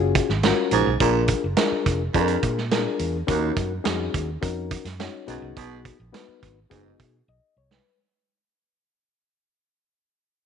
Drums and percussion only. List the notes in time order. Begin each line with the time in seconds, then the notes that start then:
0.15 kick, closed hi-hat
0.29 snare
0.43 snare, closed hi-hat
0.71 closed hi-hat
1.00 kick, closed hi-hat
1.28 kick, closed hi-hat
1.57 snare, closed hi-hat
1.86 kick, closed hi-hat
2.14 kick, closed hi-hat
2.28 closed hi-hat
2.43 kick, closed hi-hat
2.58 snare
2.71 snare, closed hi-hat
2.99 closed hi-hat
3.28 kick, closed hi-hat
3.56 kick, closed hi-hat
3.85 snare, closed hi-hat
4.14 kick, closed hi-hat
4.43 kick, closed hi-hat
4.71 kick, closed hi-hat
4.85 snare, closed hi-hat
5.00 snare, closed hi-hat
5.28 closed hi-hat
5.57 kick, closed hi-hat
5.85 kick, closed hi-hat
6.14 snare, closed hi-hat
6.43 kick, closed hi-hat
6.71 kick, closed hi-hat
7.00 kick, closed hi-hat
7.71 snare